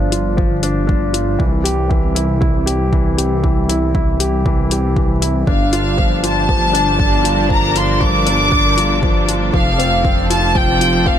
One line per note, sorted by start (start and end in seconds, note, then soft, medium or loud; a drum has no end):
0.00 1.37 G1 medium
0.00 0.37 F3 medium
0.00 0.63 D4 medium
0.00 0.12 F4 medium
0.12 0.37 F4 medium
0.12 closed hi-hat medium
0.37 0.52 F3 medium
0.37 kick loud
0.63 0.86 D4 medium
0.63 closed hi-hat medium
0.87 1.12 D4 medium
0.87 kick loud
1.13 1.38 F4 medium
1.13 closed hi-hat medium
1.39 5.44 C2 medium
1.39 1.64 E3 medium
1.39 kick loud
1.64 1.89 G4 medium
1.64 closed hi-hat medium
1.89 2.05 E3 medium
1.89 kick loud
2.15 2.39 E4 medium
2.15 closed hi-hat medium
2.41 2.65 E4 medium
2.41 kick loud
2.66 2.91 G4 medium
2.66 closed hi-hat medium
2.93 3.17 E3 medium
2.93 kick medium
3.17 3.42 G4 medium
3.17 closed hi-hat medium
3.43 3.58 E3 medium
3.43 kick loud
3.69 3.93 E4 medium
3.69 closed hi-hat medium
3.95 4.19 E4 medium
3.95 kick loud
4.20 4.44 G4 medium
4.20 closed hi-hat medium
4.46 4.70 E3 medium
4.46 kick loud
4.71 4.96 G4 medium
4.71 closed hi-hat medium
4.96 5.11 E3 medium
4.96 kick medium
5.22 5.46 E4 medium
5.22 closed hi-hat medium
5.47 9.51 G1 medium
5.47 9.54 G3 medium
5.47 5.71 D4 medium
5.47 6.20 F5 medium
5.47 kick loud
5.61 11.08 D4 medium
5.72 5.97 F4 medium
5.72 closed hi-hat medium
5.97 6.22 F3 medium
5.97 kick loud
6.23 6.47 F4 medium
6.23 7.48 A5 loud
6.23 closed hi-hat medium
6.39 11.19 A4 medium
6.49 6.63 F3 medium
6.49 kick loud
6.73 6.97 D4 medium
6.73 closed hi-hat medium
6.99 7.23 D4 medium
6.99 kick loud
7.03 9.54 A#4 medium
7.24 7.49 F4 medium
7.24 closed hi-hat medium
7.49 7.74 F3 medium
7.49 kick medium
7.53 7.77 A#5 loud
7.76 8.00 F4 medium
7.76 8.02 C6 medium
7.76 closed hi-hat soft
8.00 8.15 F3 medium
8.00 9.29 D6 loud
8.00 kick medium
8.26 8.50 D4 medium
8.26 closed hi-hat medium
8.51 8.76 D4 medium
8.51 kick loud
8.77 9.01 F4 medium
8.77 closed hi-hat medium
9.03 9.27 F3 medium
9.03 kick medium
9.28 9.53 F4 medium
9.28 closed hi-hat medium
9.53 11.19 F1 medium
9.53 11.19 F3 medium
9.53 9.68 F3 medium
9.53 10.26 F5 loud
9.53 kick loud
9.78 10.02 C4 medium
9.78 closed hi-hat soft
10.01 11.19 C4 medium
10.01 10.28 C4 medium
10.01 kick medium
10.30 10.54 F4 medium
10.30 10.56 A5 loud
10.30 closed hi-hat medium
10.55 10.79 F3 medium
10.55 11.06 G5 loud
10.55 kick medium
10.67 11.19 G4 medium
10.81 11.05 F4 medium
10.81 closed hi-hat medium
11.06 11.19 F3 medium
11.06 11.19 F5 medium
11.06 kick medium